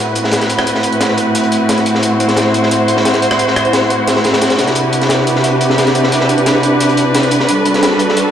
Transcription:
Already playing: A2 C4 E4 F#4 B4
0.15 closed hi-hat
0.24 snare
0.32 snare, closed hi-hat
0.41 snare, closed hi-hat
0.50 closed hi-hat
0.58 cross-stick, snare
0.67 closed hi-hat
0.75 snare
0.83 closed hi-hat
0.93 closed hi-hat
1.01 snare, closed hi-hat
1.18 closed hi-hat
1.35 closed hi-hat
1.43 closed hi-hat
1.52 closed hi-hat
1.69 snare, closed hi-hat
1.78 closed hi-hat
1.86 closed hi-hat
1.95 snare
2.03 C5, closed hi-hat
2.20 closed hi-hat
2.28 snare, closed hi-hat
2.37 snare, closed hi-hat
2.54 closed hi-hat
2.63 snare
2.71 closed hi-hat
2.88 closed hi-hat
2.97 snare
3.05 snare, closed hi-hat
3.14 snare, closed hi-hat
3.22 closed hi-hat
3.31 cross-stick, snare
3.39 closed hi-hat
3.48 snare
3.56 cross-stick, closed hi-hat
3.65 closed hi-hat
3.73 snare, closed hi-hat
3.90 closed hi-hat
4.07 snare, closed hi-hat
4.16 snare
4.24 snare, closed hi-hat
4.33 snare, closed hi-hat
4.41 snare, closed hi-hat
4.50 snare, closed hi-hat
4.58 C3 D4 G4 B4, snare, closed hi-hat
4.67 snare, closed hi-hat
4.75 closed hi-hat
4.93 closed hi-hat
5.02 snare, closed hi-hat
5.09 snare, closed hi-hat
5.27 closed hi-hat
5.36 snare
5.44 closed hi-hat
5.61 closed hi-hat
5.70 snare
5.78 snare, closed hi-hat
5.87 snare, closed hi-hat
5.95 closed hi-hat
6.04 snare
6.12 closed hi-hat
6.20 snare
6.29 closed hi-hat
6.38 closed hi-hat
6.46 snare, closed hi-hat
6.63 closed hi-hat
6.80 closed hi-hat
6.89 closed hi-hat
6.97 closed hi-hat
7.15 snare, closed hi-hat
7.23 closed hi-hat
7.31 closed hi-hat
7.40 snare
7.48 G3 F#4 A4, closed hi-hat
7.65 closed hi-hat
7.74 snare, closed hi-hat
7.83 snare, closed hi-hat
7.99 closed hi-hat
8.09 snare
8.17 closed hi-hat

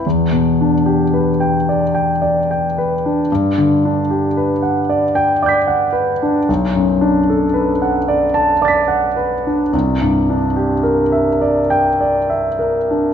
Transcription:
0.07 E2
0.32 B2
0.61 D4
0.86 G4
1.14 B4
1.40 G5
1.69 D5
1.95 G5
2.22 D5
2.51 G5
2.78 B4
3.06 D4
3.32 G2
3.58 D3
3.85 D4
4.10 G4
4.37 B4
4.63 F#5
4.89 D5
5.15 G5
5.42 D5 D6 G6
5.49 B6
5.67 F#5
5.93 B4
6.23 D4
6.49 B1
6.75 F#2
7.01 D4
7.30 A4
7.54 B4
7.82 F#5
8.08 D5
8.34 A5
8.62 D5 D6 A6
8.68 B6
8.88 F#5
9.16 B4
9.47 D4
9.73 C2
10.01 G2
10.30 D4
10.56 G4
10.83 A#4
11.12 E5
11.41 D5
11.70 G5
12.01 D5
12.30 E5
12.59 A#4
12.91 D4

